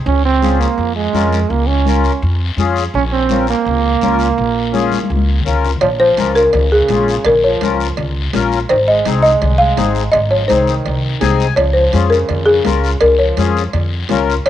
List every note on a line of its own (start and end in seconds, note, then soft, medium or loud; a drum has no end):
0.06 0.64 C#2 loud
0.06 0.23 C#4 medium
0.06 high conga soft
0.06 long guiro medium
0.25 0.62 C4 medium
0.42 0.67 C#4 medium
0.42 0.67 F4 medium
0.42 0.68 G#4 medium
0.42 high conga medium
0.42 short guiro medium
0.60 0.96 A#3 medium
0.60 short guiro medium
0.78 1.07 F2 loud
0.78 high conga soft
0.78 long guiro medium
0.96 1.51 G#3 medium
1.13 1.43 F2 medium
1.13 1.39 C#4 medium
1.13 1.39 F4 medium
1.13 1.39 A#4 medium
1.13 high conga medium
1.13 short guiro medium
1.33 short guiro medium
1.50 2.08 C#2 loud
1.50 1.69 A#3 medium
1.50 high conga soft
1.50 long guiro medium
1.67 2.22 C#4 medium
1.85 2.11 C#4 medium
1.85 2.12 F4 medium
1.85 2.12 A#4 medium
1.85 high conga medium
1.85 short guiro medium
2.04 short guiro medium
2.22 2.51 F2 loud
2.22 high conga soft
2.22 long guiro medium
2.57 2.86 F2 medium
2.57 2.83 C#4 medium
2.57 2.84 F4 medium
2.57 2.84 G#4 loud
2.57 high conga medium
2.57 short guiro medium
2.76 short guiro medium
2.94 3.52 A#1 loud
2.94 3.03 C#4 loud
2.94 high conga soft
2.94 long guiro medium
3.13 3.46 C4 loud
3.29 3.56 C#4 medium
3.29 3.55 F4 medium
3.29 3.56 A#4 medium
3.29 high conga medium
3.29 short guiro medium
3.47 5.43 A#3 medium
3.47 short guiro medium
3.65 3.95 C#2 loud
3.65 high conga soft
3.65 long guiro medium
4.01 4.31 C#2 medium
4.01 4.28 C#4 medium
4.01 4.28 F4 medium
4.01 4.28 A#4 medium
4.01 high conga medium
4.01 short guiro medium
4.19 short guiro medium
4.38 4.96 A#1 loud
4.38 high conga soft
4.38 long guiro medium
4.73 4.99 C#4 medium
4.73 4.99 F4 medium
4.73 4.99 G#4 loud
4.73 high conga medium
4.73 short guiro medium
4.92 high conga medium
4.92 short guiro medium
5.04 high conga medium
5.10 5.39 C#2 loud
5.10 long guiro medium
5.16 high conga medium
5.40 low conga medium
5.45 5.75 C#2 medium
5.45 5.71 C#4 medium
5.45 5.71 F4 medium
5.45 5.71 A#4 medium
5.45 short guiro medium
5.64 low conga medium
5.64 short guiro medium
5.76 low conga medium
5.81 6.11 A#1 loud
5.81 5.90 F3 medium
5.81 5.90 C#5 loud
5.81 cowbell loud
5.81 high conga soft
5.81 low conga medium
5.81 long guiro medium
6.00 6.33 F3 medium
6.00 6.37 C5 loud
6.17 6.47 C#2 medium
6.17 6.43 C#4 medium
6.17 6.43 F4 medium
6.17 6.44 A#4 medium
6.17 cowbell medium
6.17 high conga medium
6.17 short guiro medium
6.35 6.69 C#3 medium
6.35 6.73 A#4 medium
6.35 short guiro medium
6.53 6.83 C#2 medium
6.53 cowbell medium
6.53 high conga soft
6.53 low conga medium
6.53 long guiro medium
6.72 7.22 C#3 medium
6.72 7.28 G#4 medium
6.88 7.18 A#1 medium
6.88 7.15 C#4 medium
6.88 7.15 F4 medium
6.88 7.15 G#4 medium
6.88 cowbell medium
6.88 high conga medium
6.88 short guiro medium
7.08 short guiro medium
7.25 7.54 A#1 medium
7.25 7.35 C#3 medium
7.25 7.34 A#4 medium
7.25 cowbell loud
7.25 high conga soft
7.25 low conga medium
7.25 long guiro medium
7.44 7.95 F3 medium
7.44 7.94 C#5 medium
7.61 7.90 C#2 medium
7.61 7.87 C#4 medium
7.61 7.87 F4 medium
7.61 7.87 A#4 medium
7.61 cowbell medium
7.61 high conga medium
7.61 short guiro medium
7.80 short guiro medium
7.97 8.27 C#2 loud
7.97 cowbell medium
7.97 high conga soft
7.97 low conga medium
7.97 long guiro medium
8.33 8.63 A#1 medium
8.33 8.59 C#4 medium
8.33 8.59 F4 medium
8.33 8.59 A#4 loud
8.33 cowbell medium
8.33 high conga medium
8.33 low timbale medium
8.33 short guiro medium
8.52 short guiro medium
8.69 8.99 G#1 loud
8.69 8.78 D#3 medium
8.69 8.78 C5 loud
8.69 cowbell loud
8.69 high conga soft
8.69 long guiro medium
8.88 9.21 G#3 medium
8.88 9.21 D#5 loud
9.05 9.35 C2 medium
9.05 9.31 C4 medium
9.05 9.31 D#4 medium
9.05 9.31 G#4 medium
9.05 cowbell medium
9.05 high conga medium
9.05 short guiro medium
9.23 9.57 G#3 medium
9.23 9.60 D#5 loud
9.23 short guiro medium
9.42 9.71 C2 loud
9.42 cowbell medium
9.42 high conga soft
9.42 low conga medium
9.42 long guiro medium
9.58 10.10 G#3 medium
9.58 10.09 F5 loud
9.76 10.06 G#1 medium
9.76 10.02 C4 medium
9.76 10.02 D#4 medium
9.76 10.03 G#4 medium
9.76 cowbell medium
9.76 high conga medium
9.76 low timbale medium
9.76 short guiro medium
9.95 short guiro medium
10.12 10.43 G#1 loud
10.12 10.20 G#3 medium
10.12 10.20 D#5 loud
10.12 cowbell loud
10.12 high conga soft
10.12 low conga medium
10.12 long guiro medium
10.29 10.46 F3 medium
10.29 10.48 C#5 medium
10.47 10.79 C2 medium
10.47 11.34 D#3 medium
10.47 10.74 C4 medium
10.47 10.74 D#4 medium
10.47 10.75 G#4 medium
10.47 11.35 C5 medium
10.47 cowbell medium
10.47 high conga medium
10.47 short guiro medium
10.67 short guiro medium
10.86 11.15 C2 medium
10.86 cowbell medium
10.86 high conga soft
10.86 low conga medium
10.86 long guiro medium
11.21 11.50 C2 medium
11.21 11.46 C4 medium
11.21 11.46 D#4 medium
11.21 11.46 G#4 loud
11.21 11.55 G#5 medium
11.21 cowbell medium
11.21 high conga medium
11.21 low timbale medium
11.21 short guiro medium
11.40 short guiro medium
11.54 11.86 C#2 loud
11.54 11.73 F3 medium
11.54 11.74 C#5 medium
11.54 cowbell loud
11.54 high conga soft
11.59 long guiro medium
11.74 12.08 F3 medium
11.74 12.08 C5 medium
11.93 12.22 F2 medium
11.93 12.18 C#4 medium
11.93 12.19 F4 medium
11.93 12.19 G#4 medium
11.93 cowbell medium
11.93 high conga medium
11.93 short guiro medium
12.10 12.44 C#3 medium
12.10 12.44 A#4 medium
12.10 short guiro medium
12.29 12.58 F2 loud
12.29 cowbell medium
12.29 high conga soft
12.29 low conga medium
12.29 long guiro medium
12.46 12.97 C#3 medium
12.46 12.97 G#4 medium
12.64 12.95 C#2 medium
12.64 12.90 C#4 medium
12.64 12.91 F4 medium
12.64 12.91 A#4 medium
12.64 cowbell medium
12.64 high conga medium
12.64 low timbale medium
12.64 short guiro medium
12.84 short guiro medium
13.01 13.30 C#2 loud
13.01 13.18 C#3 medium
13.01 13.18 A#4 medium
13.01 cowbell loud
13.01 high conga soft
13.01 long guiro medium
13.19 13.70 F3 medium
13.19 13.69 C#5 medium
13.37 13.66 F2 medium
13.37 13.63 C#4 medium
13.37 13.63 F4 medium
13.37 13.63 G#4 medium
13.37 cowbell medium
13.37 high conga medium
13.37 short guiro medium
13.57 short guiro medium
13.73 14.02 F2 loud
13.73 cowbell medium
13.73 high conga soft
13.73 low conga medium
13.73 long guiro medium
14.09 14.39 C#2 medium
14.09 14.35 C#4 medium
14.09 14.35 F4 medium
14.09 14.35 A#4 loud
14.09 cowbell medium
14.09 high conga medium
14.09 low conga medium
14.09 low timbale medium
14.09 short guiro medium
14.30 short guiro medium
14.46 14.49 A#1 loud
14.46 14.49 C#5 loud
14.46 cowbell loud
14.46 high conga soft